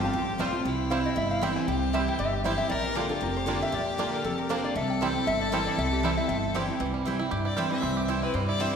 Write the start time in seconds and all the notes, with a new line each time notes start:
Already playing: G1 F2 G4
0.01 C4 F4 A5
0.13 A1 A2
0.38 A#1 F3 G3 A3 C4 F4 C5 G5
0.53 C4 F4
0.65 C2 C3 E4
0.90 E3 G3 C4 E4 C5 F5 G5
1.04 C4 E4 D#5
1.16 G1 G2 E5
1.31 F5
1.41 E3 G3 C4 E4 C5 G5
1.56 G#5
1.68 C2 C3 G4 G5
1.82 C5
1.93 E3 G3 C4 E4 C5 E5 G5
2.08 G5
2.19 G1 G2 E5
2.32 G4
2.44 E3 G3 C4 E4 G4 C5 G5
2.58 C4 E4 E5
2.69 A#1 A#2 A#4 D5
2.84 C5
2.95 D3 A#3 D4 F4 G4 A#4 D5 A#5
3.09 D4 F4 A4
3.21 F1 F2 A#4
3.37 C5
3.46 D3 A#3 D4 F4 D5 A#5
3.60 D4 F4 E5
3.72 A#1 A#2 D5
3.98 D3 A#3 D4 F4 D5 A#5
4.13 A#4
4.24 F1 F2 A4
4.38 A#4
4.49 D3 A#3 D4 F4 C5 D5 A#5
4.64 D5
4.75 C2 C3 A4 E5
4.90 G5
5.01 E3 G3 C4 E4 C5 G5
5.15 C4 E4
5.27 G1 G2 E5
5.41 D5
5.52 E3 G3 C4 E4 A#4 C5 G5
5.67 D5
5.78 C2 C3 E5
5.93 G4
6.03 E3 G3 C4 E4 C5 G5
6.17 C4 E4 E5
6.28 G1 G2 E5
6.54 E3 G3 C4 E4 G4 C5 G5
6.68 C4 E4
6.80 C2 C3 E3
6.94 G3
7.05 E3 G3 C4 E4 C5 G5
7.19 C4 E4
7.31 G2 G4
7.45 E4 D5
7.57 E3 G3 C4 E4 C5 E5 G5
7.71 E3 C4 E4 E5
7.82 C2 C3 C4
7.97 G4
8.08 E3 G3 C4 E4 C5 G5
8.22 C4 E4 B4
8.34 G2 G3 C5
8.47 E4 D5
8.59 E3 G3 C4 E4 C5 E5 G5